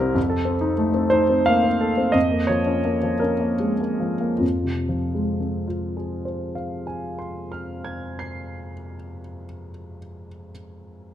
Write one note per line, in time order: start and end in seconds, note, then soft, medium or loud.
0.00 0.13 C2 soft
0.00 0.18 G3 soft
0.00 0.19 C4 soft
0.00 0.18 E4 soft
0.00 0.18 G4 soft
0.00 0.15 A#4 medium
0.15 2.10 F2 soft
0.30 0.55 A4 soft
0.45 0.71 C4 soft
0.61 0.88 D#4 soft
0.78 1.05 A3 soft
0.94 1.22 C4 soft
1.10 1.40 D#4 soft
1.10 1.46 C5 medium
1.30 1.57 C4 soft
1.46 1.65 A#3 soft
1.46 2.14 F5 medium
1.64 1.91 C4 soft
1.81 2.08 A4 soft
1.98 2.15 C4 soft
2.12 4.38 F2 soft
2.12 2.48 D#5 medium
2.31 2.60 A#3 soft
2.47 2.78 F3 soft
2.47 3.21 C#5 medium
2.66 2.96 C#4 soft
2.85 3.14 A#3 soft
3.03 3.33 F3 soft
3.20 3.53 C#4 soft
3.20 4.41 A#4 medium
3.40 3.72 A#3 soft
3.60 3.81 G#3 soft
3.80 4.14 A#3 soft
4.00 4.34 F3 soft
4.21 4.41 A#3 soft
4.38 8.71 F2 soft
4.38 5.66 F4 soft
4.64 8.95 C3 soft
4.89 9.20 F3 soft
5.15 9.45 G#3 soft
5.40 9.71 C4 soft
5.67 9.98 F4 soft
5.97 10.27 G#4 soft
6.25 10.50 C5 soft
6.55 10.50 F5 soft
6.87 10.50 G#5 soft
7.19 10.50 C6 soft
7.52 10.50 F6 soft
7.84 10.50 G#6 soft
8.19 10.50 C7 soft